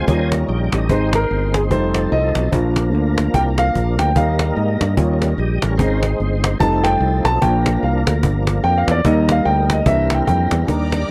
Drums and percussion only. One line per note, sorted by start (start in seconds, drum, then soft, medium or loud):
0.08 cajon bass loud
0.32 cajon slap loud
0.48 cajon slap soft
0.72 cajon slap medium
0.89 cajon bass loud
1.13 cajon slap loud
1.30 cajon slap soft
1.54 cajon slap loud
1.71 cajon bass medium
1.94 cajon slap loud
2.12 cajon slap soft
2.35 cajon slap medium
2.52 cajon bass loud
2.76 cajon slap loud
2.93 cajon slap soft
3.18 cajon slap medium
3.34 cajon bass loud
3.58 cajon slap loud
3.75 cajon bass medium
3.99 cajon slap loud
4.16 cajon bass loud
4.39 cajon slap loud
4.57 cajon slap soft
4.81 cajon slap loud
4.97 cajon bass loud
5.22 cajon slap loud
5.38 cajon slap soft
5.62 cajon slap loud
5.79 cajon bass loud
6.03 cajon slap loud
6.20 cajon slap soft
6.44 cajon slap loud
6.60 cajon bass loud
6.84 cajon slap loud
7.01 cajon slap soft
7.25 cajon slap medium
7.42 cajon bass loud
7.66 cajon slap loud
7.83 cajon slap soft
8.07 cajon slap loud
8.23 cajon bass loud
8.47 cajon slap loud
8.64 cajon slap soft
8.88 cajon slap loud
9.05 cajon bass loud
9.29 cajon slap loud
9.46 cajon slap soft
9.70 cajon slap loud
9.86 cajon bass loud
10.10 cajon slap loud
10.28 cajon bass medium
10.51 cajon slap loud
10.68 cajon bass medium
10.92 cajon slap medium